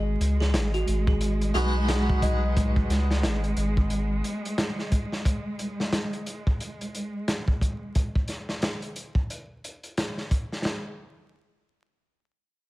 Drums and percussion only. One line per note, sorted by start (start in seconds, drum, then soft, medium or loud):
0.21 closed hi-hat medium
0.41 snare soft
0.54 snare loud
0.54 closed hi-hat medium
0.74 closed hi-hat soft
0.87 closed hi-hat medium
1.07 kick loud
1.21 closed hi-hat medium
1.41 closed hi-hat soft
1.55 closed hi-hat medium
1.89 snare loud
1.89 closed hi-hat medium
2.09 kick medium
2.22 kick medium
2.22 closed hi-hat medium
2.56 kick loud
2.56 closed hi-hat medium
2.76 kick medium
2.90 snare soft
2.90 closed hi-hat medium
3.11 snare soft
3.23 snare loud
3.23 closed hi-hat medium
3.44 closed hi-hat soft
3.57 closed hi-hat medium
3.77 kick loud
3.90 closed hi-hat medium
4.24 closed hi-hat medium
4.45 closed hi-hat soft
4.58 snare loud
4.58 closed hi-hat medium
4.79 snare soft
4.92 kick medium
4.92 closed hi-hat medium
5.12 snare soft
5.25 kick loud
5.25 closed hi-hat medium
5.59 closed hi-hat medium
5.80 snare soft
5.92 snare loud
5.92 closed hi-hat medium
6.13 closed hi-hat soft
6.26 closed hi-hat medium
6.47 kick medium
6.60 closed hi-hat medium
6.81 closed hi-hat soft
6.95 closed hi-hat medium
7.28 snare loud
7.28 closed hi-hat medium
7.48 kick medium
7.61 kick medium
7.61 closed hi-hat medium
7.95 kick loud
7.95 closed hi-hat medium
8.15 kick medium
8.28 snare soft
8.28 closed hi-hat medium
8.49 snare soft
8.62 snare loud
8.62 closed hi-hat medium
8.82 closed hi-hat soft
8.96 closed hi-hat medium
9.15 kick medium
9.30 closed hi-hat medium
9.64 closed hi-hat medium
9.83 closed hi-hat soft
9.97 snare loud
9.97 closed hi-hat medium
10.17 snare soft
10.31 kick medium
10.31 closed hi-hat medium
10.52 snare soft
10.65 snare medium